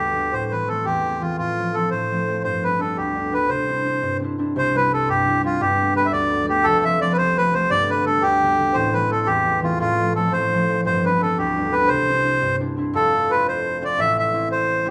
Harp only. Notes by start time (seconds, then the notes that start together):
Already playing: D2 A3
0.00 D3 G3 B3
0.15 D3 G3 B3
0.33 A2
0.52 E3 A3 C4
0.68 E3 A3 C4
0.86 E2
1.03 E3 A3
1.09 C4
1.22 E3 A3 C4
1.39 A2
1.58 F3 A3 C4
1.75 F3 A3 C4
1.92 A2
2.11 F3 A3 C4
2.27 F3 A3 C4
2.44 G2
2.63 G3 B3 D4
2.79 G3 B3 D4
2.96 D2
3.15 G3 B3 D4
3.32 G3 B3 D4
3.49 C3
3.68 C4 D4 E4
3.85 C4 D4 E4
4.02 G2
4.20 C4 D4
4.24 E4
4.38 C4 D4 E4
4.56 C2 C3
4.75 G3 C4 E4
4.92 G3 C4 E4
5.08 G2
5.27 G3 C4 E4
5.43 G3 C4 E4
5.60 G1 G2
5.79 G3 A3 B3
5.95 G3 A3 B3
6.12 D2
6.30 G3 A3
6.34 B3
6.46 G3 A3
6.52 B3
6.65 F1 F2
6.84 F3 A3 C4
7.00 F3 A3 C4
7.19 C2
7.37 F3 A3 C4
7.54 F3 A3 C4
7.70 G1 G2
7.89 D3 G3 B3
8.06 D3 G3 B3
8.23 D2
8.43 D3 G3 B3
8.59 D3 G3 B3
8.75 A1 A2
8.94 E3 A3 C4
9.10 E3 A3 C4
9.28 E2
9.46 E3 A3 C4
9.63 E3 A3 C4
9.80 A1 A2
10.00 F3 A3 C4
10.15 F3 A3 C4
10.33 A2
10.52 F3 A3 C4
10.68 F3 A3 C4
10.85 G1 G2
11.04 G3 B3 D4
11.20 G3 B3 D4
11.38 D2
11.57 G3 B3 D4
11.73 G3 B3 D4
11.88 C2 C3
12.09 C4 D4 E4
12.24 C4 D4 E4
12.42 G2
12.60 C4 D4 E4
12.77 C4 D4 E4
12.94 F1 F2
13.30 A3 C4 F4
13.82 A3 C4 F4
13.98 A1 A2
14.33 A3 C4 E4
14.85 A3 C4 E4